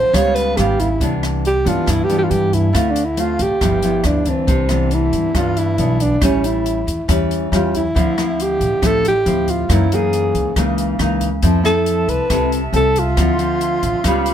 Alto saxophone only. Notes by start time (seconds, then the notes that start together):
Already playing: C5
0.14 C#5
0.35 B4
0.57 G4
0.80 E4
1.47 G4
1.68 F4
1.90 E4
2.04 G4
2.18 G4
2.24 F4
2.30 G4
2.54 E4
2.91 D4
3.05 E4
3.20 F4
3.42 G4
4.06 D4
4.29 C4
4.94 E4
5.37 F4
5.58 E4
6.02 D4
6.24 C#4
6.46 E4
7.54 F4
7.77 E4
8.42 G4
8.87 A4
9.08 G4
9.50 F4
9.73 E4
9.94 G#4
11.65 A4
12.09 B4
12.76 A4
12.99 F4